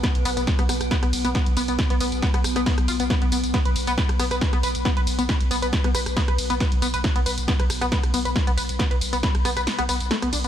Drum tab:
RD |xxxxxxxxxxxxxxxx|xxxxxxxxxxxxxxxx|xxxxxxxxxxxxxxxx|xxxxxxxxxxxxxxxx|
HH |xxoxxxoxxxoxxxox|xxoxxxoxoxoxxxox|xxoxxxoxxxoxxxox|xxoxxxoxoxoxxxox|
TB |x-xxx-xxx-xxx-xx|x-xxx-xxx-xxx-xx|x-xxx-xxx-xxx-xx|x-xxx-xxx-xxx-xx|
SD |o---orrror--o---|o---orrror--o---|o---orrror--o---|o---orrror--o---|
BD |o---o---o---o---|o---o---o---o---|o---o---o---o---|o---o---o---o---|

RD |xxxxxxxxxxxxxxxx|xxxxxxxxxxxxxxxx|
HH |xxoxxxoxxxoxxxox|xxoxxxoxoxoxxxox|
TB |x-xxx-xxx-xxx-xx|x-xxx-xxx-xxx-xx|
SD |o---orrror--o---|o---orrror--or--|
BD |o---o---o---o---|o---o-----------|